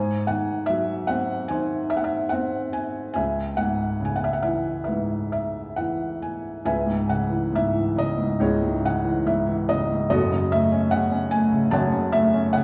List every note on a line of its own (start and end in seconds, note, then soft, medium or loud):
0.00 3.11 G#2 medium
0.00 1.46 C5 medium
0.00 0.30 G#5 medium
0.27 1.48 D#3 soft
0.27 0.69 F#5 medium
0.66 2.28 F#3 soft
0.66 1.09 E5 medium
1.07 2.31 C4 medium
1.07 1.50 F#5 medium
1.48 3.12 D#3 medium
1.48 3.12 C5 medium
1.48 1.91 G#5 medium
1.90 1.97 E5 medium
1.97 2.04 F#5 medium
2.04 2.33 E5 medium
2.29 3.13 C4 medium
2.29 2.74 F#5 medium
2.73 3.12 G#5 medium
3.14 6.61 C#2 medium
3.14 4.22 E5 medium
3.14 3.58 G#5 medium
3.57 4.87 G#2 soft
3.57 4.07 F#5 medium
4.00 5.74 C#3 soft
4.05 4.15 G#5 medium
4.16 4.25 F#5 medium
4.24 4.33 E5 medium
4.33 4.43 F#5 medium
4.43 5.76 E3 soft
4.43 4.83 E5 medium
4.84 6.62 G#2 soft
4.84 6.61 B4 soft
4.84 5.31 E5 medium
5.32 5.79 E5 medium
5.76 6.63 E3 soft
5.76 6.23 F#5 medium
6.22 6.64 G#5 medium
6.65 8.38 C#2 medium
6.65 8.37 B4 medium
6.65 7.54 E5 medium
6.65 7.10 G#5 medium
6.86 7.51 G#2 soft
7.08 7.94 C#3 soft
7.08 7.55 F#5 medium
7.29 7.72 E3 soft
7.52 8.16 G#2 soft
7.52 8.00 E5 medium
7.74 9.03 E3 soft
7.96 8.82 C#3 soft
7.96 8.42 D#5 medium
8.18 8.61 G#2 soft
8.40 10.06 C#2 medium
8.40 10.07 E4 medium
8.40 10.07 G#4 medium
8.40 8.85 C#5 medium
8.62 9.24 G#2 soft
8.83 9.68 C#3 soft
8.83 9.28 F#5 medium
9.05 9.46 E3 medium
9.26 9.89 G#2 soft
9.26 9.70 E5 medium
9.48 10.09 E3 medium
9.69 10.09 C#3 medium
9.69 10.09 D#5 medium
9.90 10.10 G#2 soft
10.10 11.70 F#1 medium
10.10 11.70 F#2 medium
10.10 11.70 F#4 medium
10.10 11.70 A4 medium
10.10 10.48 D#5 medium
10.31 10.91 C#3 medium
10.51 11.29 A3 medium
10.51 10.89 E5 medium
10.72 11.10 C#4 medium
10.91 11.50 C#3 medium
10.91 11.33 F#5 medium
11.11 12.32 C#4 medium
11.31 12.11 A3 medium
11.31 11.70 G#5 loud
11.52 11.90 C#3 medium
11.71 12.64 F#1 medium
11.71 12.64 F#2 medium
11.71 12.64 C#5 medium
11.71 12.51 F#5 medium
11.71 12.15 A5 loud
11.92 12.53 C#3 medium
12.12 12.64 A3 medium
12.12 12.56 E5 medium
12.34 12.64 C#4 medium
12.53 12.64 C#3 medium
12.53 12.64 F#5 medium